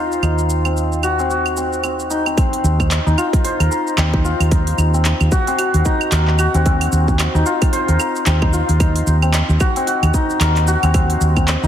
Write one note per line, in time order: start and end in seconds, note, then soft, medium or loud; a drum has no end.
0.00 0.20 D#2 medium
0.00 0.65 C4 medium
0.00 0.23 D#4 medium
0.00 1.09 F4 medium
0.00 2.25 A#4 medium
0.00 1.80 C5 medium
0.12 shaker soft
0.23 2.35 D#2 medium
0.23 2.10 D#4 medium
0.23 claves medium
0.23 shaker soft
0.39 shaker soft
0.50 shaker medium
0.65 1.19 C4 medium
0.65 claves medium
0.65 shaker soft
0.77 shaker soft
0.92 shaker soft
1.03 1.30 F#4 loud
1.03 claves medium
1.03 shaker medium
1.19 1.57 C4 loud
1.19 shaker soft
1.30 3.24 F#4 medium
1.30 shaker soft
1.46 claves medium
1.46 shaker soft
1.57 1.83 C4 medium
1.57 shaker medium
1.73 shaker soft
1.84 2.26 C4 medium
1.84 claves medium
1.84 shaker soft
2.00 shaker soft
2.10 3.06 D#4 medium
2.10 shaker medium
2.26 2.37 C4 medium
2.26 claves medium
2.26 shaker soft
2.37 2.79 C4 medium
2.37 kick loud
2.37 open hi-hat medium
2.37 claves medium
2.37 shaker soft
2.53 open hi-hat soft
2.64 2.98 D#2 loud
2.64 shaker medium
2.80 3.97 C4 medium
2.80 kick medium
2.80 claves medium
2.80 shaker soft
2.91 clap loud
2.91 open hi-hat medium
2.91 shaker soft
3.06 3.14 D#2 medium
3.06 4.13 D#4 loud
3.06 shaker soft
3.18 4.24 F4 loud
3.18 claves medium
3.18 shaker medium
3.33 kick loud
3.33 open hi-hat soft
3.33 shaker soft
3.44 6.08 C5 loud
3.44 open hi-hat medium
3.44 shaker soft
3.60 3.67 D#2 medium
3.60 3.71 A#4 medium
3.60 open hi-hat soft
3.60 claves medium
3.60 shaker soft
3.71 6.12 A#4 medium
3.71 shaker medium
3.87 shaker soft
3.98 4.32 D#2 medium
3.98 4.93 C4 medium
3.98 clap loud
3.98 open hi-hat medium
3.98 claves medium
3.98 shaker soft
4.13 4.51 D#4 medium
4.13 kick loud
4.24 5.38 F4 loud
4.24 shaker medium
4.40 4.72 D#2 medium
4.40 open hi-hat soft
4.40 claves medium
4.40 shaker soft
4.51 5.85 D#4 medium
4.51 kick loud
4.51 open hi-hat medium
4.51 shaker soft
4.67 open hi-hat soft
4.78 5.12 D#2 loud
4.78 claves medium
4.78 shaker medium
4.94 5.47 C4 medium
4.94 shaker soft
5.05 clap loud
5.05 open hi-hat medium
5.05 shaker soft
5.21 5.28 D#2 loud
5.21 claves medium
5.21 shaker soft
5.32 5.58 F#4 loud
5.32 kick loud
5.32 shaker medium
5.47 6.54 C4 loud
5.47 open hi-hat soft
5.47 shaker soft
5.58 6.38 F#4 medium
5.58 open hi-hat medium
5.58 claves medium
5.58 shaker soft
5.74 5.82 D#2 medium
5.74 open hi-hat soft
5.74 shaker soft
5.85 7.34 D#4 loud
5.85 kick medium
5.85 shaker medium
6.01 claves medium
6.01 shaker soft
6.12 6.46 D#2 loud
6.12 7.88 A#4 medium
6.12 clap loud
6.12 open hi-hat medium
6.12 shaker soft
6.27 clap soft
6.39 7.52 F#4 loud
6.39 claves medium
6.39 shaker medium
6.54 6.86 D#2 medium
6.54 6.65 C4 medium
6.54 open hi-hat soft
6.54 shaker soft
6.66 7.08 C4 loud
6.66 kick loud
6.66 open hi-hat medium
6.66 shaker soft
6.81 open hi-hat soft
6.81 claves medium
6.92 7.26 D#2 medium
6.92 shaker medium
7.08 8.26 C4 medium
7.08 kick medium
7.08 shaker soft
7.19 clap loud
7.19 open hi-hat medium
7.19 claves medium
7.19 shaker soft
7.35 7.42 D#2 loud
7.35 8.42 D#4 loud
7.35 shaker soft
7.46 8.53 F4 loud
7.46 shaker medium
7.62 kick loud
7.62 open hi-hat soft
7.62 claves medium
7.62 shaker soft
7.73 10.37 C5 loud
7.73 open hi-hat medium
7.73 shaker soft
7.88 7.96 D#2 medium
7.88 7.99 A#4 medium
7.88 open hi-hat soft
7.88 shaker soft
8.00 10.41 A#4 medium
8.00 claves medium
8.00 shaker medium
8.16 shaker soft
8.26 8.60 D#2 loud
8.26 9.22 C4 medium
8.26 clap loud
8.26 open hi-hat medium
8.26 shaker soft
8.42 8.80 D#4 loud
8.42 kick loud
8.42 claves medium
8.53 9.66 F4 loud
8.53 shaker medium
8.69 9.01 D#2 medium
8.69 open hi-hat soft
8.69 shaker soft
8.80 10.14 D#4 medium
8.80 kick loud
8.80 open hi-hat medium
8.80 claves medium
8.80 shaker soft
8.96 open hi-hat soft
9.07 9.41 D#2 medium
9.07 shaker medium
9.22 9.76 C4 medium
9.22 claves medium
9.22 shaker soft
9.34 clap loud
9.34 open hi-hat medium
9.34 shaker soft
9.49 9.57 D#2 loud
9.49 shaker soft
9.60 9.87 F#4 loud
9.60 kick loud
9.60 claves medium
9.60 shaker medium
9.76 10.83 C4 loud
9.76 open hi-hat soft
9.76 shaker soft
9.87 10.67 F#4 medium
9.87 open hi-hat medium
9.87 shaker soft
10.03 10.10 D#2 medium
10.03 open hi-hat soft
10.03 claves medium
10.03 shaker soft
10.14 11.63 D#4 loud
10.14 kick medium
10.14 shaker medium
10.30 shaker soft
10.40 10.74 D#2 loud
10.40 11.67 A#4 medium
10.40 clap loud
10.40 open hi-hat medium
10.40 claves medium
10.40 shaker soft
10.56 clap soft
10.56 open hi-hat soft
10.68 11.67 F#4 loud
10.68 shaker medium
10.83 11.15 D#2 loud
10.83 10.94 C4 loud
10.83 open hi-hat soft
10.83 claves medium
10.83 shaker soft
10.94 11.36 C4 loud
10.94 kick loud
10.94 open hi-hat medium
10.94 claves medium
10.94 shaker soft
11.10 open hi-hat soft
11.21 11.55 D#2 medium
11.21 shaker medium
11.37 11.67 C4 medium
11.37 kick medium
11.37 claves medium
11.37 shaker soft
11.48 clap medium
11.48 open hi-hat medium
11.48 shaker soft
11.63 11.67 D#2 loud
11.63 11.67 D#4 loud
11.63 shaker soft